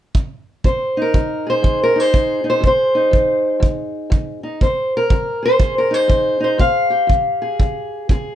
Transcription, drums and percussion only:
0.15 kick medium
0.64 kick medium
1.14 kick medium
1.64 kick medium
2.14 kick medium
2.64 kick medium
3.13 kick medium
3.63 kick medium
4.12 kick medium
4.61 kick medium
5.10 kick medium
5.60 kick medium
6.10 kick medium
6.59 kick medium
7.10 kick medium
7.60 kick medium
8.09 kick medium

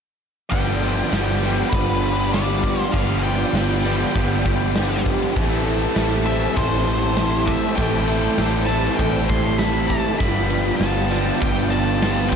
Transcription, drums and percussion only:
0.52 kick loud
0.52 crash medium
0.81 tambourine medium
0.81 crash medium
1.11 snare loud
1.11 tambourine medium
1.11 crash medium
1.42 tambourine medium
1.42 crash medium
1.72 kick loud
1.72 tambourine medium
1.72 crash medium
2.03 crash medium
2.33 snare loud
2.33 tambourine loud
2.33 crash medium
2.63 kick medium
2.63 tambourine medium
2.63 crash medium
2.93 kick loud
2.93 crash medium
3.24 tambourine medium
3.24 crash medium
3.55 snare loud
3.55 tambourine medium
3.55 crash medium
3.85 tambourine medium
3.85 crash medium
4.15 kick loud
4.15 tambourine medium
4.15 crash medium
4.46 kick medium
4.46 crash medium
4.75 snare loud
4.75 tambourine loud
4.75 crash medium
5.06 kick medium
5.06 tambourine medium
5.06 crash medium
5.36 kick loud
5.36 crash medium
5.67 tambourine medium
5.67 crash medium
5.96 snare loud
5.96 tambourine medium
5.96 crash medium
6.27 tambourine medium
6.27 crash medium
6.56 kick loud
6.56 tambourine medium
6.56 crash medium
6.87 crash medium
7.17 snare loud
7.17 tambourine medium
7.17 crash medium
7.47 kick medium
7.47 tambourine medium
7.47 crash medium
7.77 kick loud
7.77 tambourine soft
7.77 crash medium
8.07 tambourine medium
8.07 crash medium
8.38 snare loud
8.38 tambourine medium
8.38 crash medium
8.68 tambourine medium
8.68 crash medium
8.99 kick loud
8.99 tambourine medium
8.99 crash medium
9.29 kick medium
9.29 tambourine soft
9.29 crash medium
9.59 snare loud
9.59 tambourine medium
9.59 crash medium
9.89 kick medium
9.89 tambourine medium
9.89 crash medium
10.20 kick loud
10.20 crash medium
10.50 tambourine medium
10.50 crash medium
10.80 snare loud
10.80 tambourine medium
10.80 crash medium
11.11 tambourine medium
11.11 crash medium
11.41 kick loud
11.41 tambourine medium
11.41 crash medium
11.71 crash medium
12.02 snare loud
12.02 tambourine loud
12.02 crash medium
12.32 kick medium
12.32 tambourine medium
12.32 crash medium

